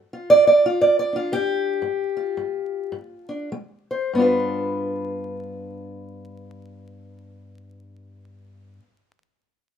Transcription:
steel-string acoustic guitar
Already playing: G2
0.13 F4
0.30 G2 D5
0.47 D5
0.66 F4
0.81 G2 D5
0.99 D5
1.13 D4 F4
1.32 G2 G4
1.82 G2
2.17 F4
2.37 G2
2.92 G2
3.29 D4
3.52 G#3
3.91 C5
4.13 G2 B3
4.18 D4 F4
4.22 B4

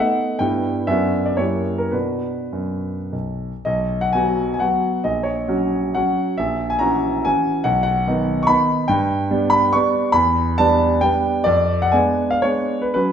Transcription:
grand piano
Already playing: F#5
0.00 A3 B3 D#4
0.39 G2 G3 B3 E4 G5
0.87 F#2 B3 D4 F#4 E5
1.26 D5
1.37 F#2 A#3 E4 G4 C#5
1.78 A#4
1.91 B2 D4 F#4 B4
2.53 F#2
3.13 B1
3.65 B1 D#5
4.01 F#5
4.13 F#3 B3 F#4 G#5
4.54 G#5
4.60 F#3 B3 F#4 F#5
5.04 A#1 D#5
5.23 C#5
5.48 F#3 C#4 F#4
5.95 F#3 C#4 F#4 F#5
6.38 A#1 E5
6.70 G#5
6.79 E3 C#4 F#4 A#5
7.25 E3 C#4 F#4 G#5
7.64 B1 F#5
7.83 F#5
8.07 D#3 B3 D#4
8.43 C#6
8.47 D#3 B3 D#4 B5
8.88 G2 G5
9.31 G3 B3 D4
9.50 B5
9.73 G3 B3 D4 C#6
10.12 E2 B5
10.58 G3 B3 D4 A5
11.01 G3 B3 D4 G5
11.44 F2 D5
11.82 F#5
11.92 G#3 B3 D4 G#5
12.31 F5
12.42 G#3 B3 D4 C#5
12.82 B4
12.94 F#3 C#4 B4

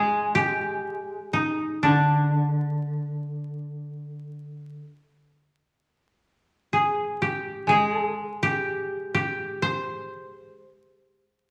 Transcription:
koto
Already playing: G#3 G#4
0.35 G4
1.33 D#4
1.83 D3 D4
6.73 G#4
7.22 G4
7.67 G#3 G#4
8.43 G4
9.14 G4
9.62 C5

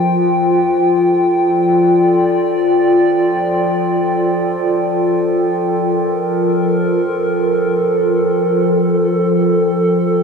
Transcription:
ambient pad
Already playing: F3 F4 A4 A#4 G5
0.87 A4
1.27 D5
5.66 A#4

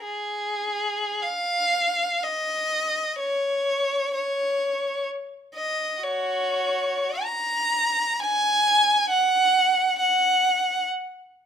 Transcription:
violin
0.00 G#4
1.23 F5
2.23 D#5
3.19 C#5
4.14 C#5
5.55 D#5
6.03 F#4 C#5
7.22 A#5
8.20 G#5
9.09 F#5
9.99 F#5

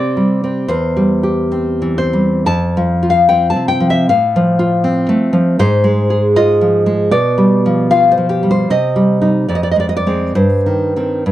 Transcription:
nylon-string guitar
Already playing: C3 G3 C4 G4 D5
0.17 G3
0.44 C4
0.68 E2 C5
0.97 G3
1.23 G4
1.52 C4
1.82 E3
1.98 C5
2.13 G3
2.46 F2 A5
2.77 F3
3.03 F4
3.10 F5
3.29 C4 G5
3.50 A5
3.56 C3
3.68 G5
3.80 F3
3.90 E5
4.09 A2 F5
4.36 F3
4.59 F4
4.84 C4
5.09 A3
5.33 F3
5.59 G#2 C5
5.84 G#3
6.10 G#4
6.36 F4 D#5
6.61 F3
6.86 G#3
7.11 B2 D5
7.38 G3
7.66 F3
7.91 F4 F5
8.12 C5
8.18 F3
8.29 G4
8.43 G3
8.51 C5
8.70 C3 D#5
8.96 G3
9.21 G3 D#4
9.48 F2 D5
9.55 D#5
9.63 D5
9.71 D#5
9.76 G#3 D5
9.89 D#5
9.97 D5
10.06 G#3 C4
10.35 G2 C5
10.66 D#3
10.96 D#3 C4
11.26 G2

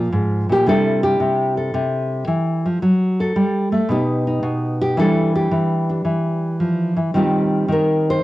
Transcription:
nylon-string guitar
Already playing: A#2 F3 D4 F4
0.12 G#2
0.49 A#2 G4
0.66 C3 G3 D4 E4 A4
1.03 G4
1.20 C3
1.57 A4
1.74 C3
2.27 E3
2.66 F3
2.82 F#3
3.20 A4
3.36 G3
3.72 A3
3.89 B2 B3 D#4 G4
4.27 D#4
4.43 B2
4.82 G4
4.97 E3 G3 D4 E4 A4
5.36 G4
5.51 E3
5.90 D4
6.05 E3
6.60 F3
6.96 E3
7.14 D#3 G3 C4 F4 G4
7.68 D#3 A#4
8.10 C5

